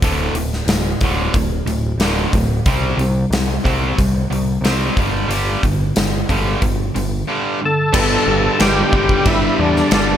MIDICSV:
0, 0, Header, 1, 7, 480
1, 0, Start_track
1, 0, Tempo, 658617
1, 20, Time_signature, 4, 2, 24, 8
1, 7412, End_track
2, 0, Start_track
2, 0, Title_t, "Tonewheel organ"
2, 0, Program_c, 0, 16
2, 5579, Note_on_c, 0, 69, 86
2, 6212, Note_off_c, 0, 69, 0
2, 6221, Note_on_c, 0, 69, 52
2, 6268, Note_off_c, 0, 69, 0
2, 6279, Note_on_c, 0, 67, 96
2, 6754, Note_on_c, 0, 64, 86
2, 6766, Note_off_c, 0, 67, 0
2, 6992, Note_on_c, 0, 62, 78
2, 6996, Note_off_c, 0, 64, 0
2, 7235, Note_off_c, 0, 62, 0
2, 7247, Note_on_c, 0, 62, 91
2, 7412, Note_off_c, 0, 62, 0
2, 7412, End_track
3, 0, Start_track
3, 0, Title_t, "Upright piano"
3, 0, Program_c, 1, 0
3, 5775, Note_on_c, 1, 59, 88
3, 5779, Note_on_c, 1, 62, 84
3, 5779, Note_on_c, 1, 67, 85
3, 5789, Note_on_c, 1, 71, 106
3, 5971, Note_off_c, 1, 59, 0
3, 5973, Note_off_c, 1, 62, 0
3, 5974, Note_off_c, 1, 67, 0
3, 5978, Note_off_c, 1, 71, 0
3, 6020, Note_on_c, 1, 59, 62
3, 6030, Note_on_c, 1, 62, 54
3, 6031, Note_on_c, 1, 67, 56
3, 6041, Note_on_c, 1, 71, 69
3, 6214, Note_off_c, 1, 59, 0
3, 6219, Note_off_c, 1, 62, 0
3, 6219, Note_off_c, 1, 67, 0
3, 6225, Note_off_c, 1, 71, 0
3, 6265, Note_on_c, 1, 59, 72
3, 6271, Note_on_c, 1, 62, 71
3, 6276, Note_on_c, 1, 67, 65
3, 6281, Note_on_c, 1, 71, 78
3, 6649, Note_off_c, 1, 59, 0
3, 6652, Note_off_c, 1, 62, 0
3, 6654, Note_off_c, 1, 67, 0
3, 6656, Note_off_c, 1, 71, 0
3, 6758, Note_on_c, 1, 59, 73
3, 6764, Note_on_c, 1, 62, 69
3, 6773, Note_on_c, 1, 67, 73
3, 6774, Note_on_c, 1, 74, 84
3, 7135, Note_off_c, 1, 59, 0
3, 7138, Note_off_c, 1, 62, 0
3, 7142, Note_off_c, 1, 67, 0
3, 7143, Note_off_c, 1, 74, 0
3, 7234, Note_on_c, 1, 59, 73
3, 7236, Note_on_c, 1, 62, 62
3, 7237, Note_on_c, 1, 67, 66
3, 7247, Note_on_c, 1, 69, 78
3, 7412, Note_off_c, 1, 59, 0
3, 7412, Note_off_c, 1, 62, 0
3, 7412, Note_off_c, 1, 67, 0
3, 7412, Note_off_c, 1, 69, 0
3, 7412, End_track
4, 0, Start_track
4, 0, Title_t, "String machine"
4, 0, Program_c, 2, 50
4, 5784, Note_on_c, 2, 62, 78
4, 5785, Note_on_c, 2, 59, 80
4, 5788, Note_on_c, 2, 55, 85
4, 5789, Note_on_c, 2, 67, 82
4, 7412, Note_off_c, 2, 55, 0
4, 7412, Note_off_c, 2, 59, 0
4, 7412, Note_off_c, 2, 62, 0
4, 7412, Note_off_c, 2, 67, 0
4, 7412, End_track
5, 0, Start_track
5, 0, Title_t, "Distorted electric guitar"
5, 0, Program_c, 3, 30
5, 19, Note_on_c, 3, 38, 68
5, 23, Note_on_c, 3, 45, 80
5, 29, Note_on_c, 3, 50, 80
5, 245, Note_off_c, 3, 38, 0
5, 247, Note_off_c, 3, 45, 0
5, 250, Note_off_c, 3, 50, 0
5, 260, Note_on_c, 3, 38, 66
5, 266, Note_on_c, 3, 45, 76
5, 476, Note_off_c, 3, 38, 0
5, 479, Note_off_c, 3, 45, 0
5, 500, Note_on_c, 3, 38, 61
5, 502, Note_on_c, 3, 45, 76
5, 716, Note_off_c, 3, 38, 0
5, 717, Note_off_c, 3, 45, 0
5, 742, Note_on_c, 3, 38, 77
5, 745, Note_on_c, 3, 45, 89
5, 753, Note_on_c, 3, 50, 94
5, 966, Note_off_c, 3, 38, 0
5, 968, Note_off_c, 3, 45, 0
5, 972, Note_off_c, 3, 50, 0
5, 980, Note_on_c, 3, 38, 68
5, 981, Note_on_c, 3, 45, 80
5, 1196, Note_off_c, 3, 38, 0
5, 1196, Note_off_c, 3, 45, 0
5, 1213, Note_on_c, 3, 38, 61
5, 1214, Note_on_c, 3, 45, 77
5, 1432, Note_off_c, 3, 38, 0
5, 1432, Note_off_c, 3, 45, 0
5, 1460, Note_on_c, 3, 38, 92
5, 1464, Note_on_c, 3, 45, 84
5, 1466, Note_on_c, 3, 50, 81
5, 1685, Note_off_c, 3, 38, 0
5, 1687, Note_off_c, 3, 45, 0
5, 1688, Note_off_c, 3, 50, 0
5, 1708, Note_on_c, 3, 45, 73
5, 1712, Note_on_c, 3, 38, 61
5, 1920, Note_off_c, 3, 45, 0
5, 1921, Note_off_c, 3, 38, 0
5, 1942, Note_on_c, 3, 48, 69
5, 1943, Note_on_c, 3, 55, 80
5, 1950, Note_on_c, 3, 60, 81
5, 2166, Note_off_c, 3, 48, 0
5, 2167, Note_off_c, 3, 55, 0
5, 2170, Note_off_c, 3, 60, 0
5, 2190, Note_on_c, 3, 48, 70
5, 2193, Note_on_c, 3, 55, 65
5, 2400, Note_off_c, 3, 48, 0
5, 2402, Note_off_c, 3, 55, 0
5, 2424, Note_on_c, 3, 55, 75
5, 2426, Note_on_c, 3, 48, 64
5, 2638, Note_off_c, 3, 48, 0
5, 2638, Note_off_c, 3, 55, 0
5, 2654, Note_on_c, 3, 48, 79
5, 2662, Note_on_c, 3, 55, 94
5, 2667, Note_on_c, 3, 60, 93
5, 2882, Note_off_c, 3, 48, 0
5, 2886, Note_off_c, 3, 55, 0
5, 2889, Note_off_c, 3, 60, 0
5, 2904, Note_on_c, 3, 55, 79
5, 2906, Note_on_c, 3, 48, 69
5, 3118, Note_off_c, 3, 55, 0
5, 3119, Note_off_c, 3, 48, 0
5, 3140, Note_on_c, 3, 55, 81
5, 3142, Note_on_c, 3, 48, 62
5, 3356, Note_off_c, 3, 55, 0
5, 3357, Note_off_c, 3, 48, 0
5, 3382, Note_on_c, 3, 48, 77
5, 3386, Note_on_c, 3, 55, 91
5, 3391, Note_on_c, 3, 60, 105
5, 3607, Note_off_c, 3, 48, 0
5, 3609, Note_off_c, 3, 55, 0
5, 3611, Note_off_c, 3, 60, 0
5, 3626, Note_on_c, 3, 43, 81
5, 3631, Note_on_c, 3, 50, 84
5, 3636, Note_on_c, 3, 55, 85
5, 3845, Note_off_c, 3, 43, 0
5, 3852, Note_off_c, 3, 50, 0
5, 3854, Note_off_c, 3, 55, 0
5, 3854, Note_on_c, 3, 43, 71
5, 3860, Note_on_c, 3, 50, 72
5, 3864, Note_on_c, 3, 55, 83
5, 4083, Note_off_c, 3, 43, 0
5, 4087, Note_off_c, 3, 50, 0
5, 4088, Note_off_c, 3, 55, 0
5, 4105, Note_on_c, 3, 43, 61
5, 4113, Note_on_c, 3, 50, 65
5, 4319, Note_off_c, 3, 43, 0
5, 4324, Note_off_c, 3, 50, 0
5, 4344, Note_on_c, 3, 43, 61
5, 4350, Note_on_c, 3, 50, 80
5, 4559, Note_off_c, 3, 43, 0
5, 4562, Note_off_c, 3, 50, 0
5, 4583, Note_on_c, 3, 43, 80
5, 4592, Note_on_c, 3, 50, 95
5, 4596, Note_on_c, 3, 55, 87
5, 4809, Note_off_c, 3, 43, 0
5, 4813, Note_off_c, 3, 50, 0
5, 4815, Note_off_c, 3, 55, 0
5, 4822, Note_on_c, 3, 43, 71
5, 4827, Note_on_c, 3, 50, 77
5, 5039, Note_off_c, 3, 43, 0
5, 5041, Note_off_c, 3, 50, 0
5, 5061, Note_on_c, 3, 43, 69
5, 5065, Note_on_c, 3, 50, 73
5, 5278, Note_off_c, 3, 43, 0
5, 5280, Note_off_c, 3, 50, 0
5, 5301, Note_on_c, 3, 43, 81
5, 5305, Note_on_c, 3, 50, 79
5, 5314, Note_on_c, 3, 55, 93
5, 5528, Note_off_c, 3, 43, 0
5, 5530, Note_off_c, 3, 50, 0
5, 5535, Note_off_c, 3, 55, 0
5, 5549, Note_on_c, 3, 43, 61
5, 5549, Note_on_c, 3, 50, 71
5, 5762, Note_off_c, 3, 43, 0
5, 5762, Note_off_c, 3, 50, 0
5, 5778, Note_on_c, 3, 50, 88
5, 5779, Note_on_c, 3, 43, 84
5, 5785, Note_on_c, 3, 55, 84
5, 6256, Note_off_c, 3, 50, 0
5, 6258, Note_off_c, 3, 43, 0
5, 6261, Note_on_c, 3, 43, 91
5, 6265, Note_on_c, 3, 50, 86
5, 6268, Note_off_c, 3, 55, 0
5, 6271, Note_on_c, 3, 55, 92
5, 6492, Note_off_c, 3, 43, 0
5, 6492, Note_off_c, 3, 50, 0
5, 6494, Note_on_c, 3, 43, 85
5, 6501, Note_off_c, 3, 55, 0
5, 6501, Note_on_c, 3, 50, 84
5, 6504, Note_on_c, 3, 55, 107
5, 6725, Note_off_c, 3, 43, 0
5, 6731, Note_off_c, 3, 50, 0
5, 6734, Note_on_c, 3, 43, 105
5, 6740, Note_on_c, 3, 50, 110
5, 6742, Note_off_c, 3, 55, 0
5, 6745, Note_on_c, 3, 55, 111
5, 7210, Note_off_c, 3, 43, 0
5, 7215, Note_off_c, 3, 50, 0
5, 7219, Note_on_c, 3, 43, 100
5, 7224, Note_on_c, 3, 50, 99
5, 7227, Note_off_c, 3, 55, 0
5, 7229, Note_on_c, 3, 55, 92
5, 7412, Note_off_c, 3, 43, 0
5, 7412, Note_off_c, 3, 50, 0
5, 7412, Note_off_c, 3, 55, 0
5, 7412, End_track
6, 0, Start_track
6, 0, Title_t, "Picked electric bass"
6, 0, Program_c, 4, 34
6, 15, Note_on_c, 4, 26, 75
6, 211, Note_off_c, 4, 26, 0
6, 240, Note_on_c, 4, 26, 72
6, 442, Note_off_c, 4, 26, 0
6, 478, Note_on_c, 4, 26, 87
6, 681, Note_off_c, 4, 26, 0
6, 739, Note_on_c, 4, 26, 83
6, 933, Note_off_c, 4, 26, 0
6, 979, Note_on_c, 4, 26, 75
6, 1173, Note_off_c, 4, 26, 0
6, 1205, Note_on_c, 4, 26, 82
6, 1405, Note_off_c, 4, 26, 0
6, 1440, Note_on_c, 4, 26, 73
6, 1642, Note_off_c, 4, 26, 0
6, 1699, Note_on_c, 4, 26, 87
6, 1893, Note_off_c, 4, 26, 0
6, 1936, Note_on_c, 4, 36, 89
6, 2131, Note_off_c, 4, 36, 0
6, 2164, Note_on_c, 4, 36, 79
6, 2364, Note_off_c, 4, 36, 0
6, 2408, Note_on_c, 4, 36, 84
6, 2606, Note_off_c, 4, 36, 0
6, 2660, Note_on_c, 4, 36, 91
6, 2854, Note_off_c, 4, 36, 0
6, 2904, Note_on_c, 4, 36, 81
6, 3097, Note_off_c, 4, 36, 0
6, 3134, Note_on_c, 4, 36, 73
6, 3330, Note_off_c, 4, 36, 0
6, 3360, Note_on_c, 4, 36, 71
6, 3563, Note_off_c, 4, 36, 0
6, 3618, Note_on_c, 4, 31, 74
6, 3814, Note_off_c, 4, 31, 0
6, 3845, Note_on_c, 4, 31, 84
6, 4046, Note_off_c, 4, 31, 0
6, 4102, Note_on_c, 4, 31, 80
6, 4296, Note_off_c, 4, 31, 0
6, 4347, Note_on_c, 4, 31, 86
6, 4539, Note_off_c, 4, 31, 0
6, 4588, Note_on_c, 4, 31, 82
6, 4780, Note_off_c, 4, 31, 0
6, 4829, Note_on_c, 4, 31, 79
6, 5021, Note_off_c, 4, 31, 0
6, 5072, Note_on_c, 4, 31, 85
6, 5263, Note_off_c, 4, 31, 0
6, 5788, Note_on_c, 4, 31, 79
6, 5946, Note_off_c, 4, 31, 0
6, 6023, Note_on_c, 4, 31, 90
6, 6184, Note_off_c, 4, 31, 0
6, 6272, Note_on_c, 4, 31, 99
6, 6429, Note_off_c, 4, 31, 0
6, 6505, Note_on_c, 4, 31, 94
6, 6665, Note_off_c, 4, 31, 0
6, 6747, Note_on_c, 4, 31, 101
6, 6906, Note_off_c, 4, 31, 0
6, 6993, Note_on_c, 4, 40, 90
6, 7150, Note_off_c, 4, 40, 0
6, 7225, Note_on_c, 4, 31, 94
6, 7384, Note_off_c, 4, 31, 0
6, 7412, End_track
7, 0, Start_track
7, 0, Title_t, "Drums"
7, 18, Note_on_c, 9, 36, 100
7, 18, Note_on_c, 9, 46, 69
7, 91, Note_off_c, 9, 36, 0
7, 91, Note_off_c, 9, 46, 0
7, 255, Note_on_c, 9, 46, 51
7, 328, Note_off_c, 9, 46, 0
7, 388, Note_on_c, 9, 38, 30
7, 461, Note_off_c, 9, 38, 0
7, 495, Note_on_c, 9, 46, 73
7, 502, Note_on_c, 9, 38, 103
7, 568, Note_off_c, 9, 46, 0
7, 575, Note_off_c, 9, 38, 0
7, 734, Note_on_c, 9, 46, 50
7, 737, Note_on_c, 9, 36, 76
7, 807, Note_off_c, 9, 46, 0
7, 810, Note_off_c, 9, 36, 0
7, 977, Note_on_c, 9, 36, 98
7, 979, Note_on_c, 9, 46, 59
7, 1050, Note_off_c, 9, 36, 0
7, 1052, Note_off_c, 9, 46, 0
7, 1221, Note_on_c, 9, 46, 45
7, 1293, Note_off_c, 9, 46, 0
7, 1456, Note_on_c, 9, 46, 59
7, 1463, Note_on_c, 9, 38, 90
7, 1529, Note_off_c, 9, 46, 0
7, 1536, Note_off_c, 9, 38, 0
7, 1699, Note_on_c, 9, 36, 84
7, 1703, Note_on_c, 9, 46, 49
7, 1772, Note_off_c, 9, 36, 0
7, 1776, Note_off_c, 9, 46, 0
7, 1937, Note_on_c, 9, 46, 55
7, 1939, Note_on_c, 9, 36, 103
7, 2010, Note_off_c, 9, 46, 0
7, 2012, Note_off_c, 9, 36, 0
7, 2181, Note_on_c, 9, 46, 47
7, 2254, Note_off_c, 9, 46, 0
7, 2424, Note_on_c, 9, 46, 61
7, 2430, Note_on_c, 9, 38, 96
7, 2497, Note_off_c, 9, 46, 0
7, 2503, Note_off_c, 9, 38, 0
7, 2662, Note_on_c, 9, 36, 64
7, 2670, Note_on_c, 9, 46, 44
7, 2735, Note_off_c, 9, 36, 0
7, 2743, Note_off_c, 9, 46, 0
7, 2904, Note_on_c, 9, 36, 91
7, 2907, Note_on_c, 9, 46, 57
7, 2977, Note_off_c, 9, 36, 0
7, 2980, Note_off_c, 9, 46, 0
7, 3152, Note_on_c, 9, 46, 43
7, 3225, Note_off_c, 9, 46, 0
7, 3386, Note_on_c, 9, 46, 60
7, 3393, Note_on_c, 9, 38, 90
7, 3459, Note_off_c, 9, 46, 0
7, 3466, Note_off_c, 9, 38, 0
7, 3622, Note_on_c, 9, 36, 96
7, 3623, Note_on_c, 9, 46, 43
7, 3695, Note_off_c, 9, 36, 0
7, 3696, Note_off_c, 9, 46, 0
7, 3868, Note_on_c, 9, 46, 61
7, 3941, Note_off_c, 9, 46, 0
7, 4105, Note_on_c, 9, 36, 72
7, 4110, Note_on_c, 9, 46, 45
7, 4178, Note_off_c, 9, 36, 0
7, 4183, Note_off_c, 9, 46, 0
7, 4343, Note_on_c, 9, 46, 66
7, 4349, Note_on_c, 9, 38, 108
7, 4416, Note_off_c, 9, 46, 0
7, 4422, Note_off_c, 9, 38, 0
7, 4586, Note_on_c, 9, 36, 70
7, 4591, Note_on_c, 9, 46, 47
7, 4659, Note_off_c, 9, 36, 0
7, 4664, Note_off_c, 9, 46, 0
7, 4825, Note_on_c, 9, 36, 93
7, 4825, Note_on_c, 9, 46, 54
7, 4898, Note_off_c, 9, 36, 0
7, 4898, Note_off_c, 9, 46, 0
7, 5072, Note_on_c, 9, 46, 45
7, 5145, Note_off_c, 9, 46, 0
7, 5786, Note_on_c, 9, 36, 106
7, 5786, Note_on_c, 9, 49, 112
7, 5786, Note_on_c, 9, 57, 53
7, 5858, Note_off_c, 9, 36, 0
7, 5858, Note_off_c, 9, 49, 0
7, 5858, Note_off_c, 9, 57, 0
7, 6265, Note_on_c, 9, 57, 64
7, 6272, Note_on_c, 9, 38, 114
7, 6338, Note_off_c, 9, 57, 0
7, 6345, Note_off_c, 9, 38, 0
7, 6507, Note_on_c, 9, 36, 86
7, 6580, Note_off_c, 9, 36, 0
7, 6627, Note_on_c, 9, 36, 82
7, 6700, Note_off_c, 9, 36, 0
7, 6745, Note_on_c, 9, 57, 54
7, 6747, Note_on_c, 9, 36, 103
7, 6818, Note_off_c, 9, 57, 0
7, 6820, Note_off_c, 9, 36, 0
7, 7115, Note_on_c, 9, 38, 29
7, 7188, Note_off_c, 9, 38, 0
7, 7222, Note_on_c, 9, 57, 59
7, 7229, Note_on_c, 9, 38, 109
7, 7295, Note_off_c, 9, 57, 0
7, 7302, Note_off_c, 9, 38, 0
7, 7412, End_track
0, 0, End_of_file